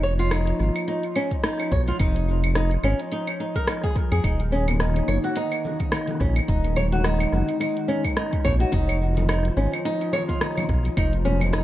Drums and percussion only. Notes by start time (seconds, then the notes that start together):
0.04 cabasa
0.19 closed hi-hat, cabasa
0.31 cross-stick, closed hi-hat, cabasa, claves
0.47 closed hi-hat, cabasa
0.59 cabasa
0.76 closed hi-hat, cabasa, claves
0.88 closed hi-hat, cabasa
1.03 closed hi-hat, cabasa
1.16 cabasa, claves
1.31 kick, closed hi-hat, cabasa
1.44 cross-stick, closed hi-hat, cabasa
1.60 closed hi-hat, cabasa, claves
1.72 kick, cabasa
1.88 closed hi-hat, cabasa
2.00 kick, closed hi-hat, cabasa, claves
2.16 closed hi-hat, cabasa
2.28 cabasa
2.44 closed hi-hat, cabasa, claves
2.55 cross-stick, closed hi-hat, cabasa
2.71 closed hi-hat, cabasa
2.83 cabasa, claves
2.99 closed hi-hat, cabasa
3.12 closed hi-hat, cabasa
3.27 closed hi-hat, cabasa, claves
3.40 cabasa
3.56 kick, closed hi-hat, cabasa
3.67 cross-stick, closed hi-hat, cabasa, claves
3.84 kick, closed hi-hat, cabasa
3.96 kick, cabasa
4.12 closed hi-hat, cabasa, claves
4.24 kick, closed hi-hat, cabasa, claves
4.40 closed hi-hat, cabasa
4.52 cabasa
4.68 closed hi-hat, muted conga, high conga, cabasa, claves
4.80 cross-stick, closed hi-hat, cabasa
4.96 closed hi-hat, cabasa
5.08 high conga, cabasa, claves
5.24 closed hi-hat, cabasa
5.36 closed hi-hat, cabasa
5.52 closed hi-hat, cabasa, claves
5.64 muted conga, cabasa
5.80 kick, closed hi-hat, high conga, cabasa
5.92 cross-stick, closed hi-hat, cabasa, claves
6.07 closed hi-hat, muted conga, high conga, cabasa
6.20 kick, cabasa
6.36 closed hi-hat, cabasa, claves
6.48 kick, closed hi-hat, cabasa
6.64 closed hi-hat, muted conga, cabasa
6.76 low conga, cabasa, claves
6.92 closed hi-hat, muted conga, high conga, cabasa
7.04 cross-stick, closed hi-hat, cabasa
7.20 closed hi-hat, cabasa, claves
7.33 high conga, cabasa
7.49 closed hi-hat, cabasa
7.61 closed hi-hat, cabasa, claves
7.77 closed hi-hat, cabasa
7.88 high conga, cabasa
8.05 kick, closed hi-hat, muted conga, cabasa, claves
8.17 cross-stick, closed hi-hat, cabasa
8.33 kick, closed hi-hat, cabasa
8.45 kick, low conga, cabasa, claves
8.60 closed hi-hat, cabasa
8.73 kick, closed hi-hat, cabasa
8.89 closed hi-hat, cabasa, claves
9.01 cabasa
9.17 closed hi-hat, muted conga, high conga, cabasa
9.29 cross-stick, closed hi-hat, cabasa, claves
9.45 closed hi-hat, cabasa
9.56 high conga, cabasa
9.73 closed hi-hat, cabasa, claves
9.85 closed hi-hat, cabasa
10.01 closed hi-hat, cabasa
10.13 muted conga, cabasa, claves
10.29 kick, closed hi-hat, high conga, cabasa
10.41 cross-stick, closed hi-hat, cabasa
10.57 closed hi-hat, muted conga, high conga, cabasa, claves
10.69 kick, cabasa
10.85 closed hi-hat, cabasa
10.97 kick, closed hi-hat, cabasa, claves
11.13 closed hi-hat, muted conga, cabasa
11.25 low conga, cabasa
11.40 closed hi-hat, muted conga, high conga, cabasa, claves
11.53 cross-stick, closed hi-hat, cabasa